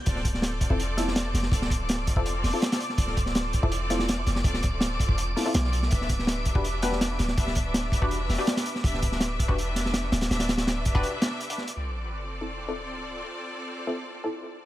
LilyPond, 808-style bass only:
\new Staff \with { instrumentName = "808-style bass" } { \clef bass \time 4/4 \key d \dorian \tempo 4 = 164 d,,4.~ d,,16 e,,4.~ e,,16 f,,8 | d,,4.~ d,,16 e,,8. e,,16 r4 r16 | d,,4.~ d,,16 e,,4.~ e,,16 f,,8 | d,,4.~ d,,16 e,,8. r8 b,,4 |
d,,4.~ d,,16 e,,4.~ e,,16 d,,8 | d,,4.~ d,,16 e,,8. e,,16 r4 r16 | d,,4.~ d,,16 e,,4.~ e,,16 d,,8 | d,,4.~ d,,16 e,,16 r2 |
r1 | r1 | }